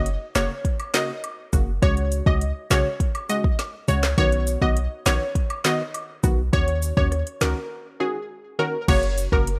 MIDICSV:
0, 0, Header, 1, 5, 480
1, 0, Start_track
1, 0, Tempo, 588235
1, 1489, Time_signature, 4, 2, 24, 8
1, 7825, End_track
2, 0, Start_track
2, 0, Title_t, "Synth pluck"
2, 0, Program_c, 0, 84
2, 290, Note_on_c, 0, 73, 87
2, 397, Note_off_c, 0, 73, 0
2, 770, Note_on_c, 0, 75, 89
2, 876, Note_off_c, 0, 75, 0
2, 1490, Note_on_c, 0, 73, 100
2, 1703, Note_off_c, 0, 73, 0
2, 1850, Note_on_c, 0, 75, 84
2, 1956, Note_off_c, 0, 75, 0
2, 2210, Note_on_c, 0, 73, 85
2, 2317, Note_off_c, 0, 73, 0
2, 2689, Note_on_c, 0, 75, 78
2, 2796, Note_off_c, 0, 75, 0
2, 3169, Note_on_c, 0, 73, 86
2, 3276, Note_off_c, 0, 73, 0
2, 3410, Note_on_c, 0, 73, 101
2, 3623, Note_off_c, 0, 73, 0
2, 3769, Note_on_c, 0, 75, 83
2, 3876, Note_off_c, 0, 75, 0
2, 4129, Note_on_c, 0, 73, 89
2, 4236, Note_off_c, 0, 73, 0
2, 4609, Note_on_c, 0, 75, 87
2, 4716, Note_off_c, 0, 75, 0
2, 5330, Note_on_c, 0, 73, 105
2, 5543, Note_off_c, 0, 73, 0
2, 5689, Note_on_c, 0, 73, 86
2, 5796, Note_off_c, 0, 73, 0
2, 6050, Note_on_c, 0, 70, 86
2, 6156, Note_off_c, 0, 70, 0
2, 6530, Note_on_c, 0, 68, 81
2, 6636, Note_off_c, 0, 68, 0
2, 7010, Note_on_c, 0, 70, 84
2, 7116, Note_off_c, 0, 70, 0
2, 7251, Note_on_c, 0, 73, 95
2, 7357, Note_off_c, 0, 73, 0
2, 7610, Note_on_c, 0, 70, 84
2, 7717, Note_off_c, 0, 70, 0
2, 7825, End_track
3, 0, Start_track
3, 0, Title_t, "Synth stab"
3, 0, Program_c, 1, 62
3, 286, Note_on_c, 1, 49, 76
3, 289, Note_on_c, 1, 58, 73
3, 291, Note_on_c, 1, 66, 85
3, 431, Note_off_c, 1, 49, 0
3, 432, Note_off_c, 1, 58, 0
3, 433, Note_off_c, 1, 66, 0
3, 767, Note_on_c, 1, 49, 78
3, 769, Note_on_c, 1, 58, 69
3, 772, Note_on_c, 1, 66, 87
3, 911, Note_off_c, 1, 49, 0
3, 912, Note_off_c, 1, 58, 0
3, 913, Note_off_c, 1, 66, 0
3, 1246, Note_on_c, 1, 49, 82
3, 1249, Note_on_c, 1, 58, 74
3, 1251, Note_on_c, 1, 66, 86
3, 1390, Note_off_c, 1, 49, 0
3, 1392, Note_off_c, 1, 58, 0
3, 1393, Note_off_c, 1, 66, 0
3, 1486, Note_on_c, 1, 49, 94
3, 1489, Note_on_c, 1, 56, 86
3, 1491, Note_on_c, 1, 66, 105
3, 1819, Note_off_c, 1, 49, 0
3, 1820, Note_off_c, 1, 56, 0
3, 1821, Note_off_c, 1, 66, 0
3, 1846, Note_on_c, 1, 49, 80
3, 1849, Note_on_c, 1, 56, 70
3, 1851, Note_on_c, 1, 66, 84
3, 1990, Note_off_c, 1, 49, 0
3, 1992, Note_off_c, 1, 56, 0
3, 1993, Note_off_c, 1, 66, 0
3, 2206, Note_on_c, 1, 49, 80
3, 2209, Note_on_c, 1, 56, 69
3, 2212, Note_on_c, 1, 66, 86
3, 2350, Note_off_c, 1, 49, 0
3, 2352, Note_off_c, 1, 56, 0
3, 2353, Note_off_c, 1, 66, 0
3, 2686, Note_on_c, 1, 49, 75
3, 2688, Note_on_c, 1, 56, 70
3, 2691, Note_on_c, 1, 66, 86
3, 2830, Note_off_c, 1, 49, 0
3, 2831, Note_off_c, 1, 56, 0
3, 2833, Note_off_c, 1, 66, 0
3, 3166, Note_on_c, 1, 49, 82
3, 3168, Note_on_c, 1, 56, 73
3, 3171, Note_on_c, 1, 66, 90
3, 3310, Note_off_c, 1, 49, 0
3, 3311, Note_off_c, 1, 56, 0
3, 3313, Note_off_c, 1, 66, 0
3, 3407, Note_on_c, 1, 51, 96
3, 3409, Note_on_c, 1, 59, 85
3, 3412, Note_on_c, 1, 66, 107
3, 3739, Note_off_c, 1, 51, 0
3, 3740, Note_off_c, 1, 59, 0
3, 3742, Note_off_c, 1, 66, 0
3, 3767, Note_on_c, 1, 51, 78
3, 3769, Note_on_c, 1, 59, 72
3, 3772, Note_on_c, 1, 66, 89
3, 3911, Note_off_c, 1, 51, 0
3, 3912, Note_off_c, 1, 59, 0
3, 3913, Note_off_c, 1, 66, 0
3, 4127, Note_on_c, 1, 51, 78
3, 4129, Note_on_c, 1, 59, 73
3, 4132, Note_on_c, 1, 66, 85
3, 4271, Note_off_c, 1, 51, 0
3, 4272, Note_off_c, 1, 59, 0
3, 4273, Note_off_c, 1, 66, 0
3, 4608, Note_on_c, 1, 51, 80
3, 4610, Note_on_c, 1, 59, 71
3, 4613, Note_on_c, 1, 66, 84
3, 4751, Note_off_c, 1, 51, 0
3, 4752, Note_off_c, 1, 59, 0
3, 4754, Note_off_c, 1, 66, 0
3, 5086, Note_on_c, 1, 51, 84
3, 5089, Note_on_c, 1, 59, 74
3, 5092, Note_on_c, 1, 66, 90
3, 5230, Note_off_c, 1, 51, 0
3, 5232, Note_off_c, 1, 59, 0
3, 5233, Note_off_c, 1, 66, 0
3, 5326, Note_on_c, 1, 51, 90
3, 5329, Note_on_c, 1, 61, 87
3, 5331, Note_on_c, 1, 66, 106
3, 5659, Note_off_c, 1, 51, 0
3, 5660, Note_off_c, 1, 61, 0
3, 5661, Note_off_c, 1, 66, 0
3, 5688, Note_on_c, 1, 51, 82
3, 5690, Note_on_c, 1, 61, 70
3, 5693, Note_on_c, 1, 66, 90
3, 5831, Note_off_c, 1, 51, 0
3, 5832, Note_off_c, 1, 61, 0
3, 5834, Note_off_c, 1, 66, 0
3, 6047, Note_on_c, 1, 51, 77
3, 6050, Note_on_c, 1, 61, 70
3, 6052, Note_on_c, 1, 66, 85
3, 6191, Note_off_c, 1, 51, 0
3, 6192, Note_off_c, 1, 61, 0
3, 6193, Note_off_c, 1, 66, 0
3, 6528, Note_on_c, 1, 51, 78
3, 6530, Note_on_c, 1, 61, 69
3, 6532, Note_on_c, 1, 66, 84
3, 6671, Note_off_c, 1, 51, 0
3, 6672, Note_off_c, 1, 61, 0
3, 6673, Note_off_c, 1, 66, 0
3, 7008, Note_on_c, 1, 51, 84
3, 7010, Note_on_c, 1, 61, 74
3, 7013, Note_on_c, 1, 66, 91
3, 7151, Note_off_c, 1, 51, 0
3, 7152, Note_off_c, 1, 61, 0
3, 7154, Note_off_c, 1, 66, 0
3, 7247, Note_on_c, 1, 49, 92
3, 7249, Note_on_c, 1, 58, 88
3, 7252, Note_on_c, 1, 66, 107
3, 7579, Note_off_c, 1, 49, 0
3, 7580, Note_off_c, 1, 58, 0
3, 7582, Note_off_c, 1, 66, 0
3, 7607, Note_on_c, 1, 49, 76
3, 7610, Note_on_c, 1, 58, 72
3, 7613, Note_on_c, 1, 66, 88
3, 7751, Note_off_c, 1, 49, 0
3, 7752, Note_off_c, 1, 58, 0
3, 7754, Note_off_c, 1, 66, 0
3, 7825, End_track
4, 0, Start_track
4, 0, Title_t, "808-style bass"
4, 0, Program_c, 2, 38
4, 0, Note_on_c, 2, 30, 98
4, 141, Note_off_c, 2, 30, 0
4, 289, Note_on_c, 2, 29, 86
4, 396, Note_off_c, 2, 29, 0
4, 1250, Note_on_c, 2, 30, 95
4, 1463, Note_off_c, 2, 30, 0
4, 1489, Note_on_c, 2, 37, 105
4, 1809, Note_off_c, 2, 37, 0
4, 1847, Note_on_c, 2, 37, 96
4, 2061, Note_off_c, 2, 37, 0
4, 2209, Note_on_c, 2, 35, 97
4, 2316, Note_off_c, 2, 35, 0
4, 3169, Note_on_c, 2, 37, 102
4, 3382, Note_off_c, 2, 37, 0
4, 3409, Note_on_c, 2, 35, 109
4, 3729, Note_off_c, 2, 35, 0
4, 3767, Note_on_c, 2, 35, 104
4, 3981, Note_off_c, 2, 35, 0
4, 4129, Note_on_c, 2, 34, 92
4, 4236, Note_off_c, 2, 34, 0
4, 5090, Note_on_c, 2, 35, 93
4, 5303, Note_off_c, 2, 35, 0
4, 5329, Note_on_c, 2, 39, 97
4, 5649, Note_off_c, 2, 39, 0
4, 5687, Note_on_c, 2, 39, 96
4, 5901, Note_off_c, 2, 39, 0
4, 6049, Note_on_c, 2, 37, 100
4, 6156, Note_off_c, 2, 37, 0
4, 7249, Note_on_c, 2, 30, 116
4, 7569, Note_off_c, 2, 30, 0
4, 7607, Note_on_c, 2, 30, 96
4, 7821, Note_off_c, 2, 30, 0
4, 7825, End_track
5, 0, Start_track
5, 0, Title_t, "Drums"
5, 49, Note_on_c, 9, 42, 77
5, 131, Note_off_c, 9, 42, 0
5, 289, Note_on_c, 9, 69, 82
5, 289, Note_on_c, 9, 76, 85
5, 290, Note_on_c, 9, 38, 124
5, 290, Note_on_c, 9, 42, 75
5, 295, Note_on_c, 9, 39, 100
5, 371, Note_off_c, 9, 38, 0
5, 371, Note_off_c, 9, 42, 0
5, 371, Note_off_c, 9, 69, 0
5, 371, Note_off_c, 9, 76, 0
5, 377, Note_off_c, 9, 39, 0
5, 528, Note_on_c, 9, 36, 83
5, 530, Note_on_c, 9, 42, 74
5, 610, Note_off_c, 9, 36, 0
5, 611, Note_off_c, 9, 42, 0
5, 649, Note_on_c, 9, 42, 53
5, 650, Note_on_c, 9, 76, 83
5, 731, Note_off_c, 9, 42, 0
5, 731, Note_off_c, 9, 76, 0
5, 767, Note_on_c, 9, 38, 112
5, 768, Note_on_c, 9, 42, 79
5, 770, Note_on_c, 9, 69, 75
5, 773, Note_on_c, 9, 39, 97
5, 849, Note_off_c, 9, 38, 0
5, 850, Note_off_c, 9, 42, 0
5, 851, Note_off_c, 9, 69, 0
5, 854, Note_off_c, 9, 39, 0
5, 1009, Note_on_c, 9, 76, 71
5, 1010, Note_on_c, 9, 42, 82
5, 1091, Note_off_c, 9, 76, 0
5, 1092, Note_off_c, 9, 42, 0
5, 1249, Note_on_c, 9, 42, 79
5, 1249, Note_on_c, 9, 69, 69
5, 1250, Note_on_c, 9, 36, 95
5, 1330, Note_off_c, 9, 42, 0
5, 1330, Note_off_c, 9, 69, 0
5, 1331, Note_off_c, 9, 36, 0
5, 1489, Note_on_c, 9, 36, 115
5, 1490, Note_on_c, 9, 42, 71
5, 1490, Note_on_c, 9, 76, 68
5, 1571, Note_off_c, 9, 36, 0
5, 1571, Note_off_c, 9, 42, 0
5, 1572, Note_off_c, 9, 76, 0
5, 1608, Note_on_c, 9, 42, 55
5, 1690, Note_off_c, 9, 42, 0
5, 1728, Note_on_c, 9, 42, 77
5, 1729, Note_on_c, 9, 69, 86
5, 1809, Note_off_c, 9, 42, 0
5, 1810, Note_off_c, 9, 69, 0
5, 1847, Note_on_c, 9, 36, 92
5, 1850, Note_on_c, 9, 76, 61
5, 1929, Note_off_c, 9, 36, 0
5, 1931, Note_off_c, 9, 76, 0
5, 1970, Note_on_c, 9, 42, 77
5, 2051, Note_off_c, 9, 42, 0
5, 2209, Note_on_c, 9, 69, 84
5, 2209, Note_on_c, 9, 76, 81
5, 2211, Note_on_c, 9, 38, 121
5, 2211, Note_on_c, 9, 42, 73
5, 2216, Note_on_c, 9, 39, 98
5, 2290, Note_off_c, 9, 69, 0
5, 2290, Note_off_c, 9, 76, 0
5, 2292, Note_off_c, 9, 38, 0
5, 2292, Note_off_c, 9, 42, 0
5, 2298, Note_off_c, 9, 39, 0
5, 2448, Note_on_c, 9, 36, 84
5, 2451, Note_on_c, 9, 42, 78
5, 2530, Note_off_c, 9, 36, 0
5, 2532, Note_off_c, 9, 42, 0
5, 2569, Note_on_c, 9, 76, 87
5, 2570, Note_on_c, 9, 42, 58
5, 2651, Note_off_c, 9, 42, 0
5, 2651, Note_off_c, 9, 76, 0
5, 2689, Note_on_c, 9, 42, 82
5, 2689, Note_on_c, 9, 69, 80
5, 2770, Note_off_c, 9, 42, 0
5, 2771, Note_off_c, 9, 69, 0
5, 2809, Note_on_c, 9, 36, 98
5, 2891, Note_off_c, 9, 36, 0
5, 2929, Note_on_c, 9, 38, 66
5, 2929, Note_on_c, 9, 76, 71
5, 2931, Note_on_c, 9, 42, 85
5, 3010, Note_off_c, 9, 38, 0
5, 3011, Note_off_c, 9, 76, 0
5, 3012, Note_off_c, 9, 42, 0
5, 3168, Note_on_c, 9, 69, 71
5, 3170, Note_on_c, 9, 42, 81
5, 3250, Note_off_c, 9, 69, 0
5, 3251, Note_off_c, 9, 42, 0
5, 3289, Note_on_c, 9, 38, 114
5, 3295, Note_on_c, 9, 39, 96
5, 3371, Note_off_c, 9, 38, 0
5, 3377, Note_off_c, 9, 39, 0
5, 3409, Note_on_c, 9, 36, 109
5, 3409, Note_on_c, 9, 42, 73
5, 3410, Note_on_c, 9, 76, 68
5, 3491, Note_off_c, 9, 36, 0
5, 3491, Note_off_c, 9, 42, 0
5, 3492, Note_off_c, 9, 76, 0
5, 3528, Note_on_c, 9, 42, 58
5, 3610, Note_off_c, 9, 42, 0
5, 3647, Note_on_c, 9, 42, 77
5, 3648, Note_on_c, 9, 69, 82
5, 3729, Note_off_c, 9, 42, 0
5, 3730, Note_off_c, 9, 69, 0
5, 3767, Note_on_c, 9, 36, 92
5, 3770, Note_on_c, 9, 76, 60
5, 3848, Note_off_c, 9, 36, 0
5, 3852, Note_off_c, 9, 76, 0
5, 3889, Note_on_c, 9, 42, 80
5, 3971, Note_off_c, 9, 42, 0
5, 4129, Note_on_c, 9, 69, 83
5, 4129, Note_on_c, 9, 76, 84
5, 4131, Note_on_c, 9, 38, 120
5, 4131, Note_on_c, 9, 42, 73
5, 4136, Note_on_c, 9, 39, 101
5, 4211, Note_off_c, 9, 69, 0
5, 4211, Note_off_c, 9, 76, 0
5, 4212, Note_off_c, 9, 38, 0
5, 4212, Note_off_c, 9, 42, 0
5, 4218, Note_off_c, 9, 39, 0
5, 4368, Note_on_c, 9, 36, 81
5, 4370, Note_on_c, 9, 42, 78
5, 4449, Note_off_c, 9, 36, 0
5, 4451, Note_off_c, 9, 42, 0
5, 4489, Note_on_c, 9, 42, 57
5, 4489, Note_on_c, 9, 76, 86
5, 4571, Note_off_c, 9, 42, 0
5, 4571, Note_off_c, 9, 76, 0
5, 4607, Note_on_c, 9, 38, 121
5, 4608, Note_on_c, 9, 42, 80
5, 4610, Note_on_c, 9, 69, 74
5, 4613, Note_on_c, 9, 39, 98
5, 4689, Note_off_c, 9, 38, 0
5, 4690, Note_off_c, 9, 42, 0
5, 4691, Note_off_c, 9, 69, 0
5, 4695, Note_off_c, 9, 39, 0
5, 4849, Note_on_c, 9, 76, 68
5, 4851, Note_on_c, 9, 42, 80
5, 4930, Note_off_c, 9, 76, 0
5, 4932, Note_off_c, 9, 42, 0
5, 5088, Note_on_c, 9, 69, 72
5, 5089, Note_on_c, 9, 42, 77
5, 5090, Note_on_c, 9, 36, 94
5, 5170, Note_off_c, 9, 69, 0
5, 5171, Note_off_c, 9, 36, 0
5, 5171, Note_off_c, 9, 42, 0
5, 5329, Note_on_c, 9, 36, 117
5, 5329, Note_on_c, 9, 76, 68
5, 5330, Note_on_c, 9, 42, 73
5, 5410, Note_off_c, 9, 76, 0
5, 5411, Note_off_c, 9, 36, 0
5, 5412, Note_off_c, 9, 42, 0
5, 5449, Note_on_c, 9, 42, 58
5, 5530, Note_off_c, 9, 42, 0
5, 5568, Note_on_c, 9, 69, 87
5, 5569, Note_on_c, 9, 42, 81
5, 5649, Note_off_c, 9, 69, 0
5, 5650, Note_off_c, 9, 42, 0
5, 5687, Note_on_c, 9, 36, 89
5, 5690, Note_on_c, 9, 76, 63
5, 5769, Note_off_c, 9, 36, 0
5, 5771, Note_off_c, 9, 76, 0
5, 5808, Note_on_c, 9, 37, 62
5, 5810, Note_on_c, 9, 42, 81
5, 5889, Note_off_c, 9, 37, 0
5, 5892, Note_off_c, 9, 42, 0
5, 5931, Note_on_c, 9, 42, 56
5, 6012, Note_off_c, 9, 42, 0
5, 6048, Note_on_c, 9, 69, 82
5, 6048, Note_on_c, 9, 76, 83
5, 6050, Note_on_c, 9, 38, 125
5, 6050, Note_on_c, 9, 42, 73
5, 6056, Note_on_c, 9, 39, 97
5, 6130, Note_off_c, 9, 69, 0
5, 6130, Note_off_c, 9, 76, 0
5, 6132, Note_off_c, 9, 38, 0
5, 6132, Note_off_c, 9, 42, 0
5, 6138, Note_off_c, 9, 39, 0
5, 7249, Note_on_c, 9, 36, 115
5, 7250, Note_on_c, 9, 42, 72
5, 7250, Note_on_c, 9, 49, 104
5, 7250, Note_on_c, 9, 76, 68
5, 7331, Note_off_c, 9, 36, 0
5, 7331, Note_off_c, 9, 49, 0
5, 7332, Note_off_c, 9, 42, 0
5, 7332, Note_off_c, 9, 76, 0
5, 7368, Note_on_c, 9, 42, 59
5, 7450, Note_off_c, 9, 42, 0
5, 7488, Note_on_c, 9, 42, 81
5, 7489, Note_on_c, 9, 69, 86
5, 7570, Note_off_c, 9, 42, 0
5, 7571, Note_off_c, 9, 69, 0
5, 7607, Note_on_c, 9, 36, 88
5, 7610, Note_on_c, 9, 76, 62
5, 7689, Note_off_c, 9, 36, 0
5, 7692, Note_off_c, 9, 76, 0
5, 7730, Note_on_c, 9, 42, 84
5, 7812, Note_off_c, 9, 42, 0
5, 7825, End_track
0, 0, End_of_file